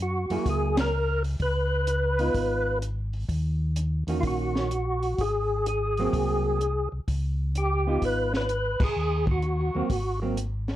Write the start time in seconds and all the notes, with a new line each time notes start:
Already playing: F#2
0.02 F#4
0.30 F#2 F#3 A#3 E4 G#4, open hi-hat
0.46 C#2 G#4, kick, open hi-hat
0.77 A#4, snare, ride
1.25 open hi-hat
1.40 C#2 B4, kick, open hi-hat
1.87 closed hi-hat
2.19 B3 D#4 F4, open hi-hat
2.35 G#1, kick, open hi-hat
2.82 closed hi-hat
3.14 open hi-hat
3.29 D#2, kick, open hi-hat
3.76 closed hi-hat
4.07 E2 D#3 A#3 C#4 F#4, open hi-hat
4.21 A#1 F4, kick, open hi-hat
4.27 F#4
4.55 snare
4.71 closed hi-hat
5.03 open hi-hat
5.18 G#1 G#4, kick, open hi-hat
5.66 G#4, closed hi-hat
5.98 F#3 A#3 C4, open hi-hat
6.13 C2, kick, open hi-hat
6.61 closed hi-hat
6.92 C2
7.08 C#2, kick, open hi-hat
7.55 G4, closed hi-hat
7.87 B3 D#4 F4
8.02 G#1 B4, kick, open hi-hat
8.34 B4, snare
8.49 closed hi-hat
8.80 G#1 G#4, kick, crash
8.96 D#2
9.27 kick
9.32 F#4
9.43 closed hi-hat
9.75 D#2 F#3 A#3 C4
9.90 G#1, kick, open hi-hat
10.22 F#3 A#3 C4
10.37 closed hi-hat
10.68 snare, open hi-hat